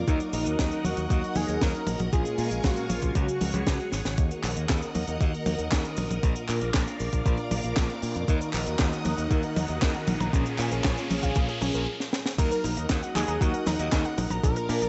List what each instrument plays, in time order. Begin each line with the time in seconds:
Already playing: string machine A#4
0.08 fingered electric bass D#2, analog polysynth F#3 A#3 D#4 F#4, analog synth lead D#4, string machine D#5 F#5 D#6, kick, closed hi-hat, cabasa
0.20 closed hi-hat, cabasa
0.33 fingered electric bass A#1, analog synth lead D#4, open hi-hat, cabasa
0.46 fingered electric bass D#2, analog polysynth F#3 A#3 D#4 F#4, closed hi-hat, cabasa
0.59 fingered electric bass D#2, analog synth lead D#4, kick, snare, closed hi-hat, cabasa
0.71 closed hi-hat, cabasa
0.84 fingered electric bass D#2, analog synth lead F#4, open hi-hat, high tom, cabasa
0.97 fingered electric bass D#2, analog polysynth F#3 A#3 D#4 F#4, closed hi-hat, cabasa
1.10 fingered electric bass D#2, analog synth lead F#4, kick, closed hi-hat, cabasa
1.24 closed hi-hat
1.35 fingered electric bass D#2, analog synth lead G#4, open hi-hat, high tom, cabasa
1.48 fingered electric bass D#2, closed hi-hat, cabasa
1.61 fingered electric bass D#2, analog synth lead A#4, kick, snare, closed hi-hat, cabasa
1.75 closed hi-hat
1.87 fingered electric bass A#1, open hi-hat, high tom, cabasa
1.99 fingered electric bass A#1, closed hi-hat, high tom, cabasa
2.13 fingered electric bass A#1, analog polysynth A#2 G#3 A#3 C#4 F4, analog synth lead G#4, string machine A#4 F5 G#5 C#6, kick, closed hi-hat, cabasa
2.25 closed hi-hat, cabasa
2.38 fingered electric bass A#2, open hi-hat, cabasa
2.51 fingered electric bass A#1, analog polysynth A#2 G#3 A#3 C#4 F4, closed hi-hat, cabasa
2.63 fingered electric bass A#1, analog synth lead F#4, kick, snare, closed hi-hat, cabasa
2.76 closed hi-hat, cabasa
2.89 fingered electric bass A#1, analog synth lead F4, open hi-hat, high tom, cabasa
3.02 fingered electric bass A#1, analog polysynth C#3 F#3 G#3 C#4 F#4, kick, closed hi-hat, cabasa
3.15 fingered electric bass C#2, analog synth lead F#4, string machine G#4 C#5 F#5 C#6, kick, closed hi-hat, cabasa
3.28 closed hi-hat, cabasa
3.41 fingered electric bass C#2, analog polysynth C#3 F#3 G#3 C#4 F#4, open hi-hat, high tom, cabasa
3.54 fingered electric bass C#2, closed hi-hat, high tom, cabasa
3.67 fingered electric bass C#2, kick, snare, closed hi-hat, cabasa
3.80 closed hi-hat
3.92 fingered electric bass G#1, snare, open hi-hat, cabasa
4.05 fingered electric bass G#1, snare, closed hi-hat, cabasa
4.18 fingered electric bass D#2, analog polysynth D#3 A#3 D#4 F#4 A#4, synth arpeggio sound D#4, string machine A#4 D#5 F#5 D#6, kick, closed hi-hat, riser, cabasa
4.31 synth arpeggio sound A#4, closed hi-hat, cabasa
4.44 fingered electric bass A#1, synth arpeggio sound D#4, clap, open hi-hat, cabasa
4.56 fingered electric bass D#2, analog polysynth D#3 A#3 D#4 F#4 A#4, closed hi-hat, cabasa
4.69 fingered electric bass D#2, kick, snare, clap, closed hi-hat, cabasa
4.82 synth arpeggio sound F#5, closed hi-hat, cabasa
4.95 fingered electric bass D#2, open hi-hat, high tom, cabasa
5.07 fingered electric bass D#2, analog polysynth D#3 A#3 D#4 F#4 A#4, synth arpeggio sound A#5, closed hi-hat, cabasa
5.21 fingered electric bass D#2, kick, closed hi-hat, cabasa
5.34 synth arpeggio sound A#4, closed hi-hat
5.46 fingered electric bass D#2, synth arpeggio sound D#4, open hi-hat, high tom, cabasa
5.58 fingered electric bass D#2, closed hi-hat, cabasa
5.72 fingered electric bass D#2, kick, snare, clap, closed hi-hat, cabasa
5.85 synth arpeggio sound F#5, closed hi-hat
5.97 fingered electric bass A#1, synth arpeggio sound D#4, open hi-hat, high tom, cabasa
6.10 fingered electric bass A#1, synth arpeggio sound A#5, closed hi-hat, high tom, cabasa
6.23 fingered electric bass A#1, analog polysynth A#2 A#3 D4 F4 A#4, string machine D5 F5 D6, kick, closed hi-hat, cabasa
6.36 synth arpeggio sound A#4, closed hi-hat, cabasa
6.48 fingered electric bass A#2, synth arpeggio sound D4, clap, open hi-hat, cabasa
6.61 fingered electric bass A#1, analog polysynth A#2 A#3 D4 F4 A#4, synth arpeggio sound D5, closed hi-hat, cabasa
6.74 fingered electric bass A#1, synth arpeggio sound D4, kick, snare, clap, closed hi-hat, cabasa
6.87 synth arpeggio sound F5, closed hi-hat, cabasa
7.00 fingered electric bass A#1, synth arpeggio sound D4, open hi-hat, cabasa
7.13 fingered electric bass A#1, analog polysynth A#2 A#3 D4 F4 A#4, synth arpeggio sound A#5, kick, closed hi-hat, cabasa
7.26 fingered electric bass A#1, synth arpeggio sound D4, kick, closed hi-hat, cabasa
7.37 synth arpeggio sound A#4, closed hi-hat
7.51 fingered electric bass A#1, synth arpeggio sound D4, open hi-hat, high tom, cabasa
7.63 fingered electric bass A#1, synth arpeggio sound D5, closed hi-hat, cabasa
7.77 fingered electric bass A#1, kick, snare, clap, closed hi-hat, cabasa
7.89 synth arpeggio sound F5, closed hi-hat
8.02 fingered electric bass A#2, synth arpeggio sound D4, open hi-hat, cabasa
8.15 fingered electric bass F2, synth arpeggio sound A#5, closed hi-hat, cabasa
8.28 fingered electric bass D#2, analog polysynth D#3 A#3 D#4 F#4 A#4, synth arpeggio sound D#4, string machine D#5 F#5 D#6, kick, closed hi-hat, cabasa
8.41 synth arpeggio sound A#4, closed hi-hat, cabasa
8.53 fingered electric bass A#1, synth arpeggio sound D#4, clap, open hi-hat, cabasa
8.66 fingered electric bass D#2, analog polysynth D#3 A#3 D#4 F#4 A#4, closed hi-hat, cabasa
8.79 fingered electric bass D#2, kick, snare, clap, closed hi-hat, cabasa
8.92 synth arpeggio sound F#5, closed hi-hat, cabasa
9.05 fingered electric bass D#2, synth arpeggio sound D#4, open hi-hat, high tom, cabasa
9.18 fingered electric bass D#2, analog polysynth D#3 A#3 D#4 F#4 A#4, synth arpeggio sound A#5, closed hi-hat, cabasa
9.31 fingered electric bass D#2, synth arpeggio sound D#4, kick, closed hi-hat, cabasa
9.43 synth arpeggio sound A#4, closed hi-hat
9.56 fingered electric bass D#2, synth arpeggio sound D#4, open hi-hat, high tom, cabasa
9.68 fingered electric bass D#2, synth arpeggio sound D#5, closed hi-hat, cabasa
9.82 fingered electric bass D#2, synth arpeggio sound D#4, kick, snare, clap, closed hi-hat, cabasa
9.94 synth arpeggio sound F#5, closed hi-hat
10.07 fingered electric bass A#1, synth arpeggio sound D#4, open hi-hat, high tom, cabasa
10.20 fingered electric bass A#1, synth arpeggio sound A#5, closed hi-hat, high tom, cabasa
10.33 fingered electric bass A#1, analog polysynth A#2 A#3 C#4 F4 G#4, synth arpeggio sound C#4, string machine F5 G#5 C#6, kick, closed hi-hat, cabasa
10.46 synth arpeggio sound G#4, closed hi-hat, cabasa
10.58 fingered electric bass A#2, synth arpeggio sound C#4, clap, open hi-hat, cabasa
10.71 fingered electric bass A#1, analog polysynth A#2 A#3 C#4 F4 G#4, synth arpeggio sound A#4, closed hi-hat, cabasa
10.84 fingered electric bass A#1, synth arpeggio sound C#4, kick, snare, clap, closed hi-hat, cabasa
10.97 synth arpeggio sound C#5, closed hi-hat, cabasa
11.10 fingered electric bass A#1, synth arpeggio sound C#4, open hi-hat, high tom, cabasa
11.23 fingered electric bass A#1, analog polysynth A#2 A#3 C#4 F4 G#4, synth arpeggio sound F5, kick, closed hi-hat, cabasa
11.35 fingered electric bass A#1, synth arpeggio sound C#4, kick, closed hi-hat, cabasa
11.49 synth arpeggio sound G#4, closed hi-hat
11.61 fingered electric bass A#1, synth arpeggio sound C#4, open hi-hat, high tom, cabasa
11.74 fingered electric bass A#1, synth arpeggio sound A#4, closed hi-hat, cabasa
12.00 snare
12.13 snare
12.26 snare
12.38 fingered electric bass D#2, analog polysynth F#3 A#3 D#4 F#4, synth arpeggio sound D#4, string machine A#4 D#5 F#5 D#6, analog synth lead A#4, kick, closed hi-hat, crash, cabasa
12.51 synth arpeggio sound A#4, closed hi-hat, cabasa
12.64 fingered electric bass A#1, synth arpeggio sound D#4, open hi-hat, cabasa
12.77 fingered electric bass D#2, analog polysynth F#3 A#3 D#4 F#4, synth arpeggio sound D#5, closed hi-hat, cabasa
12.89 fingered electric bass D#2, synth arpeggio sound D#4, kick, snare, clap, closed hi-hat, cabasa
13.03 synth arpeggio sound F#5, closed hi-hat, cabasa
13.15 fingered electric bass D#2, synth arpeggio sound D#4, analog synth lead G#4, clap, open hi-hat, high tom, cabasa
13.28 fingered electric bass D#2, analog polysynth F#3 A#3 D#4 F#4, synth arpeggio sound A#5, closed hi-hat, cabasa
13.41 fingered electric bass D#2, synth arpeggio sound D#4, analog synth lead F#4, kick, closed hi-hat, cabasa
13.54 synth arpeggio sound A#4, closed hi-hat
13.66 fingered electric bass D#2, synth arpeggio sound D#4, analog synth lead D#4, snare, open hi-hat, high tom, cabasa
13.79 fingered electric bass D#2, synth arpeggio sound D#5, closed hi-hat, cabasa
13.92 fingered electric bass D#2, synth arpeggio sound D#4, kick, snare, clap, closed hi-hat, cabasa
14.05 synth arpeggio sound F#5, closed hi-hat
14.18 fingered electric bass A#1, synth arpeggio sound D#4, open hi-hat, high tom, cabasa
14.30 fingered electric bass A#1, synth arpeggio sound A#5, closed hi-hat, high tom, cabasa
14.43 fingered electric bass A#1, analog polysynth A#2 F3 A#3 D4 F4, synth arpeggio sound D4, analog synth lead A#4, string machine D5 F5 D6, kick, closed hi-hat, cabasa
14.56 synth arpeggio sound A#4, closed hi-hat, cabasa
14.69 fingered electric bass A#2, synth arpeggio sound D4, open hi-hat, cabasa
14.82 fingered electric bass A#1, analog polysynth A#2 F3 A#3 D4 F4, synth arpeggio sound D5, closed hi-hat, cabasa